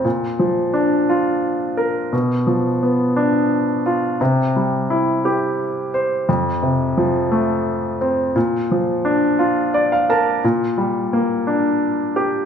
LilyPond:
<<
  \new Staff \with { instrumentName = "Grand piano" } { \time 6/8 \key bes \lydian \tempo 4. = 58 r2. | r2. | r2. | r2. |
r2 d''16 f''16 a''8 | r2. | }
  \new Staff \with { instrumentName = "Grand piano" } { \time 6/8 \key bes \lydian bes,8 f8 d'8 f'4 bes'8 | b,8 f8 b8 d'4 f'8 | c8 g8 e'8 g'4 c''8 | f,8 c8 f8 a4 c'8 |
bes,8 f8 d'8 f'4 bes'8 | bes,8 g8 bes8 d'4 g'8 | }
>>